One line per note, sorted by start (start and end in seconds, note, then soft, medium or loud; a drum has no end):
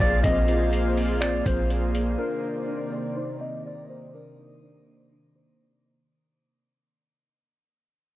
0.00 0.23 A#1 loud
0.00 6.05 A#3 medium
0.00 0.23 C4 medium
0.00 2.15 F4 medium
0.00 2.15 G#4 medium
0.00 6.05 C5 medium
0.00 0.23 D5 medium
0.00 2.15 F5 medium
0.00 1.46 D6 medium
0.00 kick medium
0.00 closed hi-hat medium
0.00 downlifter medium
0.24 1.42 A#1 loud
0.24 0.47 C4 medium
0.24 1.17 D#5 loud
0.24 kick loud
0.24 closed hi-hat medium
0.48 0.72 C4 medium
0.48 closed hi-hat medium
0.73 0.96 C4 medium
0.73 closed hi-hat medium
0.97 1.21 C4 medium
0.97 open hi-hat medium
1.21 1.44 C4 medium
1.21 1.44 D5 medium
1.21 finger snap loud
1.21 closed hi-hat medium
1.46 2.16 A#1 loud
1.46 2.19 C4 medium
1.46 1.69 C5 medium
1.46 kick medium
1.46 closed hi-hat medium
1.70 closed hi-hat medium
1.95 2.19 D5 medium
1.95 closed hi-hat medium
2.19 6.05 C3 medium
2.19 6.05 D#3 medium
2.19 2.43 D4 medium
2.19 3.12 A#4 medium
2.19 6.05 D5 medium
2.44 2.67 D4 medium
2.68 4.13 D4 medium
2.92 4.39 D5 medium
3.17 4.63 D#4 medium
3.17 3.40 C5 medium
3.41 4.87 C4 medium
3.41 3.64 D#5 medium
3.66 3.89 D5 medium
3.89 4.13 C5 medium
3.89 5.36 C5 medium
4.14 4.38 D4 medium
4.14 5.32 A#4 medium
4.39 4.62 D4 medium
4.63 4.86 D4 medium
4.87 5.11 D4 medium
5.12 5.35 D4 medium
5.36 6.09 D4 medium
5.36 6.05 C5 medium
5.86 6.10 D#5 medium